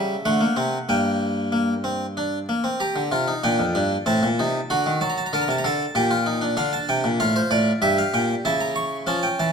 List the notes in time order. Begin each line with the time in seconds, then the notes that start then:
Already playing: C#3 G3 E5
0.25 D3 A3 F#5
0.41 A#3
0.56 C3 C4
0.89 G2 A#3 G5
1.52 A#3
1.84 C4
2.17 D4
2.49 A#3
2.64 C4
2.80 G4 A#5
2.96 D3
3.12 C3 F4
3.28 D#4
3.44 A#2 D4 G5
3.59 F2
3.75 G2 D4
4.06 A2 C4 A5
4.23 A#2
4.39 C3 D#4
4.70 D3 F#4 F#5
4.86 D#3
5.01 F#3 A5
5.10 A#5
5.18 A5
5.26 A#5
5.33 D3 A#4 A5
5.41 A#5
5.48 C3 A5
5.58 A#5
5.64 D3 A4 A5
5.95 A#2 G4 G5
6.11 F4
6.26 D#4
6.41 D4
6.57 D3 D4 F5
6.73 A5
6.89 C3 G5
7.04 A#2
7.20 A2 F4 F5
7.36 C5
7.51 A2 D5
7.82 G2 G4 E5
7.98 F5
8.14 A#2 G5
8.45 C#3 E4 A5
8.61 A#5
8.76 C#6
9.07 F3 C#4 A5
9.23 G5
9.39 E3 A5